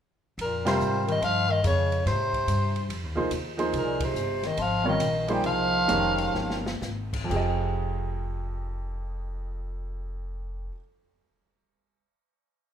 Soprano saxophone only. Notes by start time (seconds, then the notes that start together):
0.41 A#4
0.68 C5
1.12 D#5
1.24 F5
1.52 D#5
1.67 C#5
2.07 C5
3.78 A#4
4.04 C5
4.46 D#5
4.62 F5
4.89 D#5
5.33 G5
5.46 F5